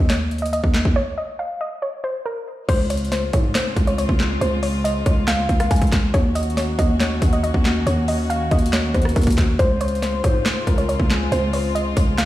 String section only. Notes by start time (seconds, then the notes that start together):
2.69 C#3 G#3 C4 F4
6.14 D#3 A#3 C#4 F#4
9.59 C#3 G#3 C4 F4